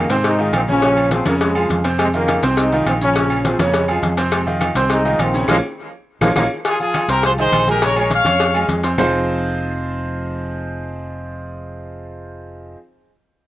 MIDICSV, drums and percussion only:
0, 0, Header, 1, 2, 480
1, 0, Start_track
1, 0, Key_signature, -4, "minor"
1, 0, Tempo, 291121
1, 1364, Time_signature, 4, 2, 24, 8
1, 22211, End_track
2, 0, Start_track
2, 0, Title_t, "Drums"
2, 161, Note_on_c, 9, 56, 71
2, 165, Note_on_c, 9, 63, 35
2, 326, Note_off_c, 9, 56, 0
2, 330, Note_off_c, 9, 63, 0
2, 398, Note_on_c, 9, 68, 84
2, 400, Note_on_c, 9, 56, 113
2, 400, Note_on_c, 9, 63, 38
2, 563, Note_off_c, 9, 68, 0
2, 565, Note_off_c, 9, 56, 0
2, 565, Note_off_c, 9, 63, 0
2, 636, Note_on_c, 9, 68, 88
2, 642, Note_on_c, 9, 63, 35
2, 801, Note_off_c, 9, 68, 0
2, 807, Note_off_c, 9, 63, 0
2, 875, Note_on_c, 9, 63, 91
2, 876, Note_on_c, 9, 66, 78
2, 876, Note_on_c, 9, 68, 119
2, 877, Note_on_c, 9, 56, 73
2, 886, Note_on_c, 9, 75, 70
2, 1040, Note_off_c, 9, 63, 0
2, 1041, Note_off_c, 9, 66, 0
2, 1041, Note_off_c, 9, 68, 0
2, 1042, Note_off_c, 9, 56, 0
2, 1051, Note_off_c, 9, 75, 0
2, 1119, Note_on_c, 9, 63, 76
2, 1284, Note_off_c, 9, 63, 0
2, 1357, Note_on_c, 9, 56, 112
2, 1358, Note_on_c, 9, 68, 84
2, 1522, Note_off_c, 9, 56, 0
2, 1523, Note_off_c, 9, 68, 0
2, 1591, Note_on_c, 9, 63, 36
2, 1596, Note_on_c, 9, 68, 118
2, 1605, Note_on_c, 9, 75, 68
2, 1756, Note_off_c, 9, 63, 0
2, 1761, Note_off_c, 9, 68, 0
2, 1770, Note_off_c, 9, 75, 0
2, 1833, Note_on_c, 9, 63, 100
2, 1835, Note_on_c, 9, 56, 75
2, 1998, Note_off_c, 9, 63, 0
2, 2000, Note_off_c, 9, 56, 0
2, 2070, Note_on_c, 9, 63, 103
2, 2079, Note_on_c, 9, 56, 72
2, 2082, Note_on_c, 9, 68, 75
2, 2235, Note_off_c, 9, 63, 0
2, 2244, Note_off_c, 9, 56, 0
2, 2247, Note_off_c, 9, 68, 0
2, 2314, Note_on_c, 9, 63, 38
2, 2319, Note_on_c, 9, 68, 69
2, 2324, Note_on_c, 9, 56, 107
2, 2478, Note_off_c, 9, 63, 0
2, 2484, Note_off_c, 9, 68, 0
2, 2489, Note_off_c, 9, 56, 0
2, 2557, Note_on_c, 9, 68, 107
2, 2559, Note_on_c, 9, 63, 36
2, 2564, Note_on_c, 9, 75, 70
2, 2722, Note_off_c, 9, 68, 0
2, 2723, Note_off_c, 9, 63, 0
2, 2729, Note_off_c, 9, 75, 0
2, 2792, Note_on_c, 9, 63, 90
2, 2807, Note_on_c, 9, 56, 73
2, 2957, Note_off_c, 9, 63, 0
2, 2972, Note_off_c, 9, 56, 0
2, 3038, Note_on_c, 9, 68, 90
2, 3042, Note_on_c, 9, 56, 68
2, 3203, Note_off_c, 9, 68, 0
2, 3207, Note_off_c, 9, 56, 0
2, 3277, Note_on_c, 9, 70, 93
2, 3280, Note_on_c, 9, 63, 36
2, 3280, Note_on_c, 9, 75, 67
2, 3281, Note_on_c, 9, 56, 112
2, 3282, Note_on_c, 9, 68, 110
2, 3442, Note_off_c, 9, 70, 0
2, 3445, Note_off_c, 9, 63, 0
2, 3445, Note_off_c, 9, 75, 0
2, 3446, Note_off_c, 9, 56, 0
2, 3447, Note_off_c, 9, 68, 0
2, 3519, Note_on_c, 9, 70, 30
2, 3523, Note_on_c, 9, 63, 36
2, 3684, Note_off_c, 9, 70, 0
2, 3688, Note_off_c, 9, 63, 0
2, 3758, Note_on_c, 9, 75, 71
2, 3763, Note_on_c, 9, 68, 116
2, 3763, Note_on_c, 9, 70, 32
2, 3766, Note_on_c, 9, 56, 72
2, 3768, Note_on_c, 9, 63, 98
2, 3922, Note_off_c, 9, 75, 0
2, 3927, Note_off_c, 9, 68, 0
2, 3928, Note_off_c, 9, 70, 0
2, 3931, Note_off_c, 9, 56, 0
2, 3933, Note_off_c, 9, 63, 0
2, 4001, Note_on_c, 9, 70, 77
2, 4007, Note_on_c, 9, 56, 74
2, 4166, Note_off_c, 9, 70, 0
2, 4172, Note_off_c, 9, 56, 0
2, 4240, Note_on_c, 9, 70, 93
2, 4241, Note_on_c, 9, 56, 114
2, 4245, Note_on_c, 9, 63, 38
2, 4246, Note_on_c, 9, 68, 81
2, 4405, Note_off_c, 9, 56, 0
2, 4405, Note_off_c, 9, 70, 0
2, 4410, Note_off_c, 9, 63, 0
2, 4411, Note_off_c, 9, 68, 0
2, 4482, Note_on_c, 9, 63, 37
2, 4484, Note_on_c, 9, 70, 33
2, 4490, Note_on_c, 9, 68, 83
2, 4647, Note_off_c, 9, 63, 0
2, 4649, Note_off_c, 9, 70, 0
2, 4655, Note_off_c, 9, 68, 0
2, 4722, Note_on_c, 9, 63, 86
2, 4725, Note_on_c, 9, 56, 73
2, 4725, Note_on_c, 9, 75, 68
2, 4727, Note_on_c, 9, 70, 30
2, 4734, Note_on_c, 9, 68, 109
2, 4887, Note_off_c, 9, 63, 0
2, 4890, Note_off_c, 9, 56, 0
2, 4890, Note_off_c, 9, 75, 0
2, 4891, Note_off_c, 9, 70, 0
2, 4898, Note_off_c, 9, 68, 0
2, 4966, Note_on_c, 9, 70, 72
2, 5131, Note_off_c, 9, 70, 0
2, 5204, Note_on_c, 9, 63, 36
2, 5205, Note_on_c, 9, 70, 101
2, 5206, Note_on_c, 9, 68, 84
2, 5207, Note_on_c, 9, 56, 121
2, 5369, Note_off_c, 9, 63, 0
2, 5370, Note_off_c, 9, 68, 0
2, 5370, Note_off_c, 9, 70, 0
2, 5372, Note_off_c, 9, 56, 0
2, 5442, Note_on_c, 9, 68, 113
2, 5444, Note_on_c, 9, 75, 70
2, 5450, Note_on_c, 9, 70, 31
2, 5607, Note_off_c, 9, 68, 0
2, 5608, Note_off_c, 9, 75, 0
2, 5615, Note_off_c, 9, 70, 0
2, 5684, Note_on_c, 9, 63, 104
2, 5688, Note_on_c, 9, 56, 75
2, 5688, Note_on_c, 9, 70, 32
2, 5849, Note_off_c, 9, 63, 0
2, 5853, Note_off_c, 9, 56, 0
2, 5853, Note_off_c, 9, 70, 0
2, 5922, Note_on_c, 9, 68, 70
2, 5925, Note_on_c, 9, 63, 105
2, 5928, Note_on_c, 9, 56, 75
2, 5929, Note_on_c, 9, 70, 72
2, 6087, Note_off_c, 9, 68, 0
2, 6090, Note_off_c, 9, 63, 0
2, 6092, Note_off_c, 9, 56, 0
2, 6094, Note_off_c, 9, 70, 0
2, 6159, Note_on_c, 9, 68, 71
2, 6162, Note_on_c, 9, 56, 109
2, 6163, Note_on_c, 9, 70, 96
2, 6168, Note_on_c, 9, 63, 36
2, 6324, Note_off_c, 9, 68, 0
2, 6327, Note_off_c, 9, 56, 0
2, 6328, Note_off_c, 9, 70, 0
2, 6333, Note_off_c, 9, 63, 0
2, 6401, Note_on_c, 9, 75, 68
2, 6402, Note_on_c, 9, 63, 37
2, 6405, Note_on_c, 9, 70, 30
2, 6407, Note_on_c, 9, 68, 111
2, 6566, Note_off_c, 9, 75, 0
2, 6567, Note_off_c, 9, 63, 0
2, 6569, Note_off_c, 9, 70, 0
2, 6572, Note_off_c, 9, 68, 0
2, 6641, Note_on_c, 9, 63, 84
2, 6644, Note_on_c, 9, 56, 72
2, 6645, Note_on_c, 9, 70, 29
2, 6806, Note_off_c, 9, 63, 0
2, 6809, Note_off_c, 9, 56, 0
2, 6810, Note_off_c, 9, 70, 0
2, 6881, Note_on_c, 9, 56, 76
2, 6882, Note_on_c, 9, 68, 87
2, 6883, Note_on_c, 9, 70, 73
2, 7046, Note_off_c, 9, 56, 0
2, 7047, Note_off_c, 9, 68, 0
2, 7047, Note_off_c, 9, 70, 0
2, 7117, Note_on_c, 9, 70, 97
2, 7119, Note_on_c, 9, 75, 69
2, 7122, Note_on_c, 9, 56, 122
2, 7126, Note_on_c, 9, 68, 107
2, 7127, Note_on_c, 9, 63, 36
2, 7282, Note_off_c, 9, 70, 0
2, 7284, Note_off_c, 9, 75, 0
2, 7287, Note_off_c, 9, 56, 0
2, 7291, Note_off_c, 9, 68, 0
2, 7292, Note_off_c, 9, 63, 0
2, 7366, Note_on_c, 9, 63, 37
2, 7366, Note_on_c, 9, 70, 30
2, 7531, Note_off_c, 9, 63, 0
2, 7531, Note_off_c, 9, 70, 0
2, 7596, Note_on_c, 9, 75, 77
2, 7600, Note_on_c, 9, 56, 73
2, 7603, Note_on_c, 9, 68, 113
2, 7604, Note_on_c, 9, 70, 31
2, 7606, Note_on_c, 9, 63, 97
2, 7761, Note_off_c, 9, 75, 0
2, 7765, Note_off_c, 9, 56, 0
2, 7768, Note_off_c, 9, 68, 0
2, 7769, Note_off_c, 9, 70, 0
2, 7771, Note_off_c, 9, 63, 0
2, 7839, Note_on_c, 9, 56, 74
2, 7842, Note_on_c, 9, 70, 76
2, 8003, Note_off_c, 9, 56, 0
2, 8007, Note_off_c, 9, 70, 0
2, 8076, Note_on_c, 9, 56, 104
2, 8085, Note_on_c, 9, 70, 102
2, 8086, Note_on_c, 9, 63, 38
2, 8087, Note_on_c, 9, 68, 88
2, 8241, Note_off_c, 9, 56, 0
2, 8249, Note_off_c, 9, 70, 0
2, 8251, Note_off_c, 9, 63, 0
2, 8252, Note_off_c, 9, 68, 0
2, 8329, Note_on_c, 9, 68, 89
2, 8331, Note_on_c, 9, 70, 31
2, 8493, Note_off_c, 9, 68, 0
2, 8495, Note_off_c, 9, 70, 0
2, 8561, Note_on_c, 9, 56, 76
2, 8563, Note_on_c, 9, 63, 90
2, 8565, Note_on_c, 9, 66, 78
2, 8565, Note_on_c, 9, 68, 118
2, 8567, Note_on_c, 9, 75, 72
2, 8571, Note_on_c, 9, 70, 32
2, 8725, Note_off_c, 9, 56, 0
2, 8728, Note_off_c, 9, 63, 0
2, 8730, Note_off_c, 9, 66, 0
2, 8730, Note_off_c, 9, 68, 0
2, 8732, Note_off_c, 9, 75, 0
2, 8736, Note_off_c, 9, 70, 0
2, 8809, Note_on_c, 9, 70, 75
2, 8974, Note_off_c, 9, 70, 0
2, 9034, Note_on_c, 9, 75, 101
2, 9042, Note_on_c, 9, 63, 99
2, 9044, Note_on_c, 9, 56, 109
2, 9044, Note_on_c, 9, 65, 101
2, 9047, Note_on_c, 9, 70, 106
2, 9199, Note_off_c, 9, 75, 0
2, 9207, Note_off_c, 9, 63, 0
2, 9209, Note_off_c, 9, 56, 0
2, 9209, Note_off_c, 9, 65, 0
2, 9212, Note_off_c, 9, 70, 0
2, 10243, Note_on_c, 9, 75, 101
2, 10246, Note_on_c, 9, 63, 105
2, 10247, Note_on_c, 9, 70, 101
2, 10248, Note_on_c, 9, 56, 103
2, 10252, Note_on_c, 9, 65, 110
2, 10408, Note_off_c, 9, 75, 0
2, 10411, Note_off_c, 9, 63, 0
2, 10412, Note_off_c, 9, 56, 0
2, 10412, Note_off_c, 9, 70, 0
2, 10417, Note_off_c, 9, 65, 0
2, 10484, Note_on_c, 9, 56, 103
2, 10487, Note_on_c, 9, 63, 106
2, 10490, Note_on_c, 9, 75, 104
2, 10491, Note_on_c, 9, 70, 104
2, 10492, Note_on_c, 9, 65, 109
2, 10649, Note_off_c, 9, 56, 0
2, 10652, Note_off_c, 9, 63, 0
2, 10655, Note_off_c, 9, 75, 0
2, 10656, Note_off_c, 9, 70, 0
2, 10657, Note_off_c, 9, 65, 0
2, 10963, Note_on_c, 9, 56, 116
2, 10965, Note_on_c, 9, 63, 36
2, 10970, Note_on_c, 9, 70, 100
2, 10970, Note_on_c, 9, 75, 72
2, 10971, Note_on_c, 9, 68, 104
2, 11128, Note_off_c, 9, 56, 0
2, 11129, Note_off_c, 9, 63, 0
2, 11135, Note_off_c, 9, 70, 0
2, 11135, Note_off_c, 9, 75, 0
2, 11136, Note_off_c, 9, 68, 0
2, 11207, Note_on_c, 9, 70, 32
2, 11209, Note_on_c, 9, 63, 34
2, 11372, Note_off_c, 9, 70, 0
2, 11374, Note_off_c, 9, 63, 0
2, 11445, Note_on_c, 9, 56, 73
2, 11448, Note_on_c, 9, 70, 30
2, 11450, Note_on_c, 9, 63, 100
2, 11453, Note_on_c, 9, 68, 117
2, 11454, Note_on_c, 9, 75, 69
2, 11610, Note_off_c, 9, 56, 0
2, 11613, Note_off_c, 9, 70, 0
2, 11614, Note_off_c, 9, 63, 0
2, 11618, Note_off_c, 9, 68, 0
2, 11619, Note_off_c, 9, 75, 0
2, 11687, Note_on_c, 9, 56, 75
2, 11687, Note_on_c, 9, 70, 75
2, 11691, Note_on_c, 9, 63, 37
2, 11852, Note_off_c, 9, 56, 0
2, 11852, Note_off_c, 9, 70, 0
2, 11856, Note_off_c, 9, 63, 0
2, 11924, Note_on_c, 9, 56, 103
2, 11933, Note_on_c, 9, 70, 94
2, 11935, Note_on_c, 9, 68, 86
2, 12089, Note_off_c, 9, 56, 0
2, 12098, Note_off_c, 9, 70, 0
2, 12100, Note_off_c, 9, 68, 0
2, 12173, Note_on_c, 9, 63, 37
2, 12173, Note_on_c, 9, 70, 29
2, 12174, Note_on_c, 9, 68, 89
2, 12338, Note_off_c, 9, 63, 0
2, 12338, Note_off_c, 9, 70, 0
2, 12339, Note_off_c, 9, 68, 0
2, 12407, Note_on_c, 9, 63, 82
2, 12408, Note_on_c, 9, 70, 29
2, 12409, Note_on_c, 9, 56, 70
2, 12414, Note_on_c, 9, 68, 108
2, 12416, Note_on_c, 9, 75, 74
2, 12572, Note_off_c, 9, 63, 0
2, 12572, Note_off_c, 9, 70, 0
2, 12573, Note_off_c, 9, 56, 0
2, 12579, Note_off_c, 9, 68, 0
2, 12581, Note_off_c, 9, 75, 0
2, 12641, Note_on_c, 9, 63, 73
2, 12650, Note_on_c, 9, 70, 74
2, 12806, Note_off_c, 9, 63, 0
2, 12815, Note_off_c, 9, 70, 0
2, 12894, Note_on_c, 9, 56, 109
2, 12895, Note_on_c, 9, 68, 88
2, 12898, Note_on_c, 9, 70, 98
2, 13059, Note_off_c, 9, 56, 0
2, 13060, Note_off_c, 9, 68, 0
2, 13063, Note_off_c, 9, 70, 0
2, 13127, Note_on_c, 9, 68, 112
2, 13129, Note_on_c, 9, 63, 34
2, 13133, Note_on_c, 9, 75, 67
2, 13140, Note_on_c, 9, 70, 30
2, 13292, Note_off_c, 9, 68, 0
2, 13294, Note_off_c, 9, 63, 0
2, 13298, Note_off_c, 9, 75, 0
2, 13305, Note_off_c, 9, 70, 0
2, 13365, Note_on_c, 9, 63, 98
2, 13367, Note_on_c, 9, 56, 73
2, 13380, Note_on_c, 9, 70, 29
2, 13529, Note_off_c, 9, 63, 0
2, 13532, Note_off_c, 9, 56, 0
2, 13544, Note_off_c, 9, 70, 0
2, 13601, Note_on_c, 9, 63, 97
2, 13610, Note_on_c, 9, 68, 71
2, 13615, Note_on_c, 9, 70, 76
2, 13616, Note_on_c, 9, 56, 75
2, 13766, Note_off_c, 9, 63, 0
2, 13775, Note_off_c, 9, 68, 0
2, 13780, Note_off_c, 9, 70, 0
2, 13781, Note_off_c, 9, 56, 0
2, 13844, Note_on_c, 9, 63, 39
2, 13849, Note_on_c, 9, 56, 109
2, 13854, Note_on_c, 9, 68, 71
2, 13863, Note_on_c, 9, 70, 95
2, 14009, Note_off_c, 9, 63, 0
2, 14014, Note_off_c, 9, 56, 0
2, 14019, Note_off_c, 9, 68, 0
2, 14027, Note_off_c, 9, 70, 0
2, 14083, Note_on_c, 9, 63, 37
2, 14086, Note_on_c, 9, 68, 107
2, 14092, Note_on_c, 9, 75, 75
2, 14101, Note_on_c, 9, 70, 30
2, 14248, Note_off_c, 9, 63, 0
2, 14251, Note_off_c, 9, 68, 0
2, 14257, Note_off_c, 9, 75, 0
2, 14266, Note_off_c, 9, 70, 0
2, 14321, Note_on_c, 9, 63, 93
2, 14326, Note_on_c, 9, 56, 73
2, 14338, Note_on_c, 9, 70, 33
2, 14486, Note_off_c, 9, 63, 0
2, 14491, Note_off_c, 9, 56, 0
2, 14503, Note_off_c, 9, 70, 0
2, 14561, Note_on_c, 9, 63, 37
2, 14568, Note_on_c, 9, 56, 74
2, 14573, Note_on_c, 9, 68, 82
2, 14581, Note_on_c, 9, 70, 73
2, 14726, Note_off_c, 9, 63, 0
2, 14733, Note_off_c, 9, 56, 0
2, 14737, Note_off_c, 9, 68, 0
2, 14746, Note_off_c, 9, 70, 0
2, 14804, Note_on_c, 9, 64, 99
2, 14809, Note_on_c, 9, 75, 96
2, 14811, Note_on_c, 9, 61, 107
2, 14812, Note_on_c, 9, 66, 100
2, 14814, Note_on_c, 9, 70, 106
2, 14969, Note_off_c, 9, 64, 0
2, 14974, Note_off_c, 9, 75, 0
2, 14976, Note_off_c, 9, 61, 0
2, 14977, Note_off_c, 9, 66, 0
2, 14979, Note_off_c, 9, 70, 0
2, 22211, End_track
0, 0, End_of_file